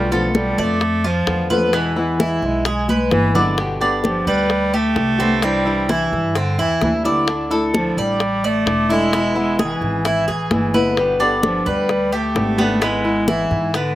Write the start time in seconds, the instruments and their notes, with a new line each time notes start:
Already playing: upright bass B1, nylon-string guitar B2 D3 A3 B3 F4, bass clarinet G3, cuban tres F4
0.11 nylon-string guitar D3 A3 B3 F4, bass clarinet F3, cuban tres A4, high conga
0.30 nylon-string guitar D3, bass clarinet A3
0.35 bass clarinet G3, nylon-string guitar A3 B3 F4, high bongo, high conga
0.58 upright bass F2, bass clarinet A3, cuban tres D5, high conga
0.81 muted nylon-string guitar stroke, high bongo, high conga
1.04 bass clarinet F3, cuban tres F4, high conga
1.27 upright bass E2, nylon-string guitar D3 A3 B3 F4, high bongo, low bongo, high conga
1.50 nylon-string guitar D3 A3 B3 F4, bass clarinet F3, cuban tres B4, high conga
1.73 nylon-string guitar B2 E3 G#3 B3 E4, bass clarinet E3, cuban tres B3, high bongo
1.96 bass clarinet E3, nylon-string guitar E3 G#3 B3 E4, high conga
2.19 nylon-string guitar E3 G#3 B3 E4, cuban tres E4, high bongo, high conga
2.42 upright bass B1, bass clarinet G#3, high bongo
2.65 bass clarinet G#3, cuban tres G#4, muted nylon-string guitar stroke, high bongo, high conga
2.88 cuban tres B4, high bongo, high conga
3.11 upright bass G1, nylon-string guitar E3 G#3 B3 E4, bass clarinet E3, high bongo, low bongo, high conga
3.35 bass clarinet D3, nylon-string guitar E3 G#3 B3 E4, cuban tres D4, high bongo, low conga
3.58 nylon-string guitar B2 D3 G3 B3 G4, high bongo, high conga
3.81 nylon-string guitar D3 G3 B3 G4, cuban tres D4, high conga
4.03 nylon-string guitar D3 G3 B3 G4, bass clarinet F3, high bongo, high conga
4.27 upright bass D2, bass clarinet G3, cuban tres B4, high conga
4.49 muted nylon-string guitar stroke, high bongo, high conga
4.74 bass clarinet A3, cuban tres G4, high conga
4.95 upright bass C2, nylon-string guitar D3 G3 B3 G4, high bongo, low bongo, high conga
5.18 nylon-string guitar D3 G3 B3 G4, cuban tres C4, high conga
5.42 nylon-string guitar C3 E3 G3 D4 E4, bass clarinet G3, cuban tres C4, high bongo, high conga
5.65 nylon-string guitar E3 G3 D4 E4, high conga
5.88 nylon-string guitar E3 G3 D4 E4, bass clarinet E3, cuban tres E4, high bongo, high conga
6.13 upright bass G2, high bongo
6.35 bass clarinet D3, cuban tres C4, muted nylon-string guitar stroke, high bongo, high conga
6.58 upright bass E2, bass clarinet E3, cuban tres E4, high bongo, high conga
6.82 upright bass D2, nylon-string guitar E3 G3 D4 E4, bass clarinet E3, high bongo, low bongo, high conga
7.04 bass clarinet D3, nylon-string guitar E3 G3 D4 E4, cuban tres D5, high bongo, high conga
7.27 nylon-string guitar D3 A3 D4 E4, high bongo, high conga
7.50 nylon-string guitar A3 D4 E4, cuban tres A4, high conga
7.74 nylon-string guitar D3 A3 D4 E4, bass clarinet F3, high bongo, high conga
7.97 upright bass A1, bass clarinet G3, cuban tres D5, high conga
8.20 muted nylon-string guitar stroke, high bongo, high conga
8.44 bass clarinet A3, cuban tres D5, high conga
8.66 upright bass E1, nylon-string guitar D3 A3 D4 E4, high bongo, low bongo, high conga
8.89 bass clarinet G#3, nylon-string guitar A3 D4 E4, cuban tres E4
9.12 nylon-string guitar B2 E3 G#3 B3 E4, cuban tres E4, high bongo, high conga
9.35 nylon-string guitar E3 G#3 B3 E4, bass clarinet G#3, high conga
9.58 nylon-string guitar E3 G#3 B3 E4, cuban tres G#4, high bongo, high conga
9.63 bass clarinet E3
9.81 upright bass G#1, high bongo
10.05 cuban tres E4, muted nylon-string guitar stroke, high bongo, high conga
10.28 upright bass A1, cuban tres G#4, high bongo, high conga
10.51 upright bass G1, nylon-string guitar E3 G#3 B3 E4, bass clarinet E3, high bongo, low bongo, high conga
10.74 bass clarinet D3, nylon-string guitar E3 G#3 B3 E4, cuban tres B4, high bongo, high conga
10.97 nylon-string guitar B2 D3 G3 B3 G4, high bongo, high conga
11.20 nylon-string guitar D3 G3 B3 G4, cuban tres D4, high conga
11.42 nylon-string guitar D3 G3 B3 G4, bass clarinet F3, high bongo, high conga
11.66 upright bass D2, bass clarinet G3, cuban tres B4, high conga
11.89 muted nylon-string guitar stroke, high bongo, high conga
12.12 bass clarinet A3, cuban tres G4, high conga
12.35 upright bass G#1, nylon-string guitar D3 G3 B3 G4, high bongo, low bongo, high conga
12.58 nylon-string guitar D3 G3 B3 G4, cuban tres B3, high conga
12.81 nylon-string guitar G#3 B3 E4, bass clarinet G#3, cuban tres B3, high bongo, high conga
13.04 nylon-string guitar B3 E4, high conga
13.27 bass clarinet E3, nylon-string guitar G#3 B3 E4, cuban tres E4, high bongo, high conga
13.51 upright bass G#2, high bongo
13.74 bass clarinet D3, cuban tres B3, muted nylon-string guitar stroke, high bongo, high conga